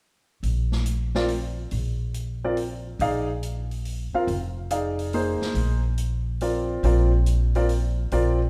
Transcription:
0.43 A#1, open hi-hat
0.72 snare
0.86 closed hi-hat
1.15 C4 F4 A#4 D5, snare
1.28 open hi-hat
1.71 A#1, open hi-hat
2.14 closed hi-hat
2.44 C4 F4 A#4 D5
2.57 open hi-hat
2.99 A#1 D#4 G#4 D5 F5, open hi-hat
3.43 closed hi-hat
3.71 open hi-hat
3.85 open hi-hat
4.13 C4 F4 A#4 F5, muted upright bass stroke
4.27 F1, open hi-hat
4.70 D#4 G#4 D5 F5, closed hi-hat
4.99 open hi-hat
5.13 A#3 D#4 G#4 C5, open hi-hat
5.41 muted upright bass stroke, snare
5.54 A#1, open hi-hat
5.98 closed hi-hat
6.41 C4 F4 A#4 D5, open hi-hat
6.83 A#1 C4 F4 A#4 D5, open hi-hat
7.26 closed hi-hat
7.55 C4 F4 A#4 D5, open hi-hat
7.69 open hi-hat
8.11 A#1 C4 F4 A#4 D5, open hi-hat

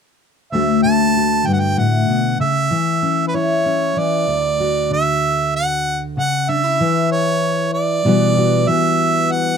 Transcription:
0.52 D2 D3 A3 F#4 E5
0.83 D3 A5
1.17 F#4
1.46 G2 G5
1.53 F#5
1.60 G5
1.77 A2 F#5
2.09 B2
2.40 C#3 E5
2.71 E3
3.03 C#4
3.28 B4
3.34 E4 C#5
3.66 C#4
3.96 E3 D5
4.27 D2
4.60 F#4
4.90 D3 E5
5.56 F#5
6.17 C#3 F#5
6.49 D4 E5
6.64 E4
6.80 E3
7.12 C#5
7.73 D5
8.05 B2 E3 G3 B3 F#4
8.37 F#4
8.68 E3 E5
9.31 F#5

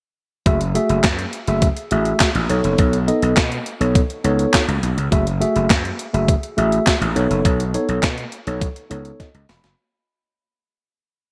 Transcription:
0.46 F#1 A3 F#4 G#4 E5, kick, closed hi-hat
0.61 closed hi-hat
0.75 A3 F#4 G#4 E5, closed hi-hat
0.89 F#1, closed hi-hat
1.04 F#2, kick, snare, clap, closed hi-hat
1.19 closed hi-hat
1.33 closed hi-hat
1.47 F#1 A3 F#4 G#4 E5, closed hi-hat
1.62 kick, closed hi-hat
1.77 closed hi-hat
1.91 A1 A3 F#4 G#4 E5, closed hi-hat
2.05 closed hi-hat
2.20 kick, snare, clap, closed hi-hat
2.35 A1, closed hi-hat
2.49 B1 B3 D#4 A4 C#5, closed hi-hat
2.64 F#1, closed hi-hat
2.78 B1, kick, closed hi-hat
2.93 closed hi-hat
3.08 B3 D#4 A4 D#5, closed hi-hat
3.22 B1, closed hi-hat
3.37 B2, kick, snare, clap, closed hi-hat
3.52 closed hi-hat
3.66 closed hi-hat
3.81 B1 B3 D#4 A4 C#5, closed hi-hat
3.95 kick, closed hi-hat
4.10 closed hi-hat
4.24 C#2 B3 D#4 A4 C#5, closed hi-hat
4.39 closed hi-hat
4.54 kick, snare, clap, closed hi-hat
4.68 C#2, closed hi-hat
4.83 B1, closed hi-hat
4.98 C#2, closed hi-hat
5.11 F#1 A3 F#4 G#4 E5, kick, closed hi-hat
5.27 closed hi-hat
5.40 A3 F#4 G#4 E5, closed hi-hat
5.56 F#1, closed hi-hat
5.70 F#2, kick, snare, clap, closed hi-hat
5.85 closed hi-hat
5.99 closed hi-hat
6.13 F#1 A3 F#4 G#4 E5, closed hi-hat
6.28 kick, closed hi-hat
6.43 closed hi-hat
6.57 A1 A3 F#4 G#4 E5, closed hi-hat
6.72 closed hi-hat
6.87 kick, snare, clap, closed hi-hat
7.01 A1, closed hi-hat
7.15 B1 B3 D#4 A4 C#5, closed hi-hat
7.30 F#1, closed hi-hat
7.45 B1, kick, closed hi-hat
7.60 closed hi-hat
7.74 B3 D#4 A4 C#5, closed hi-hat
7.89 B1, closed hi-hat
8.03 B2, kick, snare, clap, closed hi-hat
8.18 closed hi-hat
8.32 closed hi-hat
8.47 B1 B3 D#4 A4 C#5, closed hi-hat
8.61 kick, closed hi-hat
8.76 closed hi-hat
8.90 C#2 B3 D#4 A4 C#5, closed hi-hat
9.05 closed hi-hat
9.20 D#5, kick, snare, closed hi-hat
9.34 C#2, closed hi-hat
9.49 E1 B5, snare, open hi-hat
9.64 F#1, snare, closed hi-hat

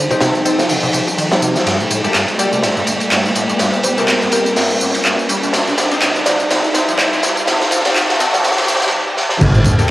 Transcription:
Already playing: C3 F3 D#4, riser
0.10 C3 C4 D#4 G4, kick, tambourine
0.21 C3, snare, ride, tambourine
0.35 tambourine
0.45 C4 D#4 A4, ride, tambourine
0.59 F3, snare, tambourine
0.69 C3, open hi-hat, tambourine
0.83 C3, tambourine
0.93 C3, ride, tambourine
1.07 kick, tambourine
1.18 D#3, ride, tambourine
1.31 G3, snare, tambourine
1.42 C3, ride, tambourine
1.55 G3, snare, tambourine
1.66 G2 A#2 G3 A3, snare, ride, tambourine
1.79 A#2, tambourine
1.90 A2, ride, tambourine
2.04 G2 A#3 G4 A4, ride, tambourine
2.14 G2, snare, clap, ride, tambourine
2.28 ride, tambourine
2.38 G3 A#3 G4 A4 D5, ride, tambourine
2.52 C3, tambourine
2.62 G2, snare, ride, tambourine
2.76 G2, tambourine
2.87 G1, ride, tambourine
3.00 ride, tambourine
3.11 G2, snare, clap, ride, tambourine
3.25 A#2, tambourine
3.35 A2, ride, tambourine
3.49 G2, tambourine
3.59 G2 A#3, snare, ride, tambourine
3.73 tambourine
3.83 G3 C5, ride, tambourine
3.98 C3 A#3 G4 A4 A#4, tambourine
4.07 G2 A#4, snare, clap, ride, tambourine
4.22 G2, tambourine
4.32 G1 A#3 G4 A#4, ride, tambourine
4.46 A#4, tambourine
4.56 G2, snare, open hi-hat, tambourine
4.70 A#2, tambourine
4.81 A2, tambourine
4.94 G2, ride, tambourine
5.05 G2, snare, clap, tambourine
5.19 tambourine
5.29 G3, ride, tambourine
5.43 C3, tambourine
5.53 C3 D#4, snare, ride, tambourine
5.67 C3, tambourine
5.78 C2, snare, ride, tambourine
5.91 C4 D#4 G4, ride, tambourine
6.01 C3, snare, clap, ride, tambourine
6.16 D#3, ride, tambourine
6.26 D3 D5, snare, ride, tambourine
6.40 C3, tambourine
6.51 C3, snare, ride, tambourine
6.64 tambourine
6.74 C4, snare, ride, tambourine
6.88 F3, ride, tambourine
6.98 C3, snare, clap, ride, tambourine
7.12 C3, tambourine
7.23 C2, snare, ride, tambourine
7.37 tambourine
7.47 C3 F3, snare, ride, tambourine
7.61 D#3, snare, tambourine
7.71 D3 C5, snare, ride, tambourine
7.85 C3 C4 D#4 G4, snare, ride, tambourine
7.96 C3, snare, clap, ride, tambourine
8.09 snare, ride, tambourine
8.19 C4 D#4 A4, snare, ride, tambourine
8.33 F3, snare, tambourine
8.44 C3, snare, ride, tambourine, swell
8.51 snare
8.57 C3, snare, ride, tambourine
8.62 snare
8.68 C2, snare, ride, tambourine
8.75 snare
8.82 snare, ride, tambourine
8.87 snare
9.17 snare
9.29 snare
9.41 G1 G2 A3 A#3 G4, kick, crash, ride, tambourine, sub drop
9.54 A#2, tambourine
9.64 A2, kick, ride, tambourine
9.78 G2 A#3 G4 A4, ride, tambourine

